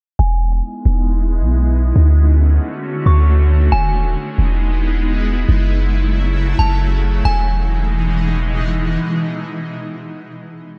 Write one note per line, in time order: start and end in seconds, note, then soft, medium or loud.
0.19 0.62 E1 loud
0.19 1.94 G#3 medium
0.19 1.94 B3 medium
0.19 1.94 D#4 medium
0.19 1.94 E4 medium
0.19 1.92 G#5 loud
0.85 1.42 E1 loud
1.41 1.93 B1 medium
1.96 2.59 D2 loud
1.96 3.70 D3 medium
1.96 3.70 A3 medium
1.96 3.70 C#4 medium
1.96 3.71 F#4 medium
3.06 3.70 D2 loud
3.06 3.68 C#6 medium
3.72 4.07 E1 loud
3.72 5.47 G#3 medium
3.72 5.47 B3 medium
3.72 5.47 D#4 medium
3.72 7.22 E4 medium
3.72 5.45 G#5 loud
4.05 4.16 D#1 medium
4.38 5.45 E1 loud
5.49 6.55 F#1 loud
5.49 7.23 C#3 medium
5.49 7.23 F#3 medium
5.49 7.23 A3 medium
6.59 7.22 F#1 loud
6.59 6.80 A5 medium
7.25 8.98 E1 loud
7.25 10.24 B2 medium
7.25 10.25 E3 medium
7.25 10.24 G#3 medium
7.25 10.24 D#4 medium
7.25 8.54 G#5 medium